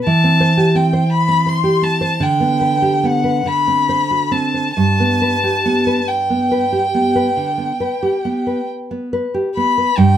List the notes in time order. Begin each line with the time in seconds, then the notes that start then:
0.05 E3 A5
0.24 C4
0.40 C5
0.57 G4
0.75 C4 G5
0.93 C5
1.13 B5
1.28 C4
1.46 C5 C6
1.64 G4
1.82 C4 A5
2.01 C5
2.20 D3 G5
2.40 B3
2.61 B4
2.82 G4
3.03 B3 F#5
3.24 B4
3.46 D3 B5
3.67 C4
3.89 C5
4.11 F#4
4.31 C4 A5
4.54 C5
4.75 G2 A5
5.00 B3
5.22 B4
5.44 G4
5.66 B3
5.87 B4
6.07 G5
6.30 B3
6.51 B4
6.72 G4
6.95 B3
7.16 B4
7.37 D3
7.58 B3
7.80 B4
8.03 G4
8.25 B3
8.47 B4
8.91 B3
9.13 B4
9.34 G4
9.56 B3 B5
9.78 B4
9.97 G2 G5